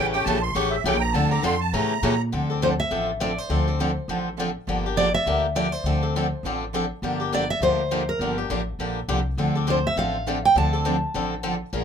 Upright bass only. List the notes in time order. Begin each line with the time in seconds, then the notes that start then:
Already playing: A1
0.26 A#1
0.55 A1
0.84 A#1
1.14 D2
1.43 F2
1.73 A2
2.02 A#2
2.33 D2
2.91 A1
3.49 D2
4.08 A1
4.67 G1
5.26 D2
5.84 D2
6.43 A1
7.02 G1
7.60 D2
8.19 G1
8.49 A1
8.79 A#1
9.08 C2
9.37 D2
9.96 A1
10.55 D2
11.14 A1
11.73 A#1